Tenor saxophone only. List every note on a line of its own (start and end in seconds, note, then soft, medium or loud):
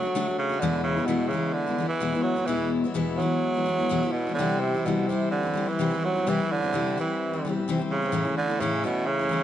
0.00 0.37 F#3 medium
0.38 0.62 C#3 medium
0.60 0.83 D3 medium
0.83 1.07 C#3 medium
1.06 1.29 B2 medium
1.28 1.54 C#3 medium
1.53 1.88 D3 medium
1.88 2.24 E3 medium
2.23 2.47 F#3 medium
2.46 2.71 E3 medium
3.17 4.14 F#3 medium
4.12 4.34 B2 medium
4.34 4.62 D3 medium
4.60 4.88 C3 medium
4.86 5.10 B2 medium
5.08 5.31 C3 medium
5.31 5.70 D3 medium
5.68 6.06 E3 medium
6.05 6.30 F#3 medium
6.29 6.53 E3 medium
6.52 6.98 D3 medium
7.00 7.61 E3 medium
7.90 8.34 C#3 medium
8.37 8.62 D3 medium
8.60 8.86 C#3 medium
8.85 9.08 B2 medium
9.06 9.43 C#3 medium